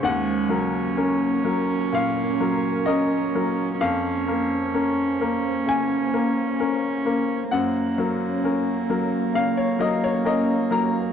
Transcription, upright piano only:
\new Staff \with { instrumentName = "Upright piano" } { \time 4/4 \key ees \dorian \tempo 4 = 65 << { ges''2 f''4 ees''4 | f''2 aes''2 | ges''2 f''16 des''16 ees''16 des''16 ees''8 bes''8 | } \\ { ees,8 <ges bes'>8 <des' bes'>8 <ges bes'>8 bes,8 <ges bes'>8 <des' bes'>8 <ges bes'>8 | f,8 <bes bes'>8 <des' bes'>8 <bes bes'>8 des8 <bes bes'>8 <des' bes'>8 <bes bes'>8 | ges,8 <ges bes'>8 <des' bes'>8 <ges bes'>8 des8 <ges bes'>8 <des' bes'>8 <ges bes'>8 | } >> }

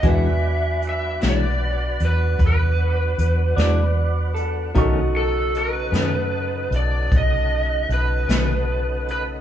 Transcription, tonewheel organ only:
\new Staff \with { instrumentName = "Tonewheel organ" } { \time 12/8 \key e \major \tempo 4. = 51 <fis b d' fis'>1. | <cis a dis' fis'>1. | }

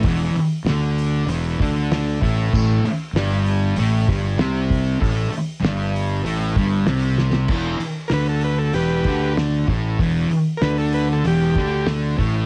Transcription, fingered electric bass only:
\new Staff \with { instrumentName = "Fingered electric bass" } { \clef bass \time 4/4 \key e \minor \tempo 4 = 96 e,,8 r8 d,4 e,,8 d,4 a,,8 | a,,8 r8 g,,4 a,,8 g,,8 c,4 | a,,8 r8 g,,4 a,,8 g,,8 c,4 | e,,8 r8 d,4 e,,8 d,4 a,,8 |
e,,8 r8 d,4 e,,8 d,4 a,,8 | }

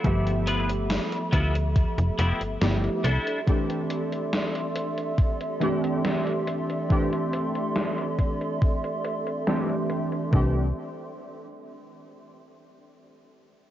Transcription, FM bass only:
\new Staff \with { instrumentName = "FM bass" } { \clef bass \time 4/4 \key c \major \tempo 4 = 70 g,,4 r8 d,8 r16 f,,16 f,,16 g,,16 g,,16 r16 c,16 r16 | r1 | r1 | c,8 r2. r8 | }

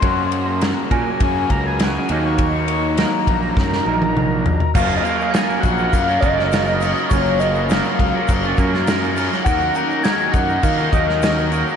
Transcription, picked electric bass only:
\new Staff \with { instrumentName = "Picked electric bass" } { \clef bass \time 4/4 \key ges \major \tempo 4 = 102 ges,4. bes,16 r16 ges,8 des,4 ees,8~ | ees,4. bes,,8 ges,8 bes,,4. | ges,,8 r4 bes,,8 ges,8 ges,,4. | ges,,4. des,16 r16 ges,,8 ges,4. |
ees,8 r4 ges,8 ees8 ees,4. | }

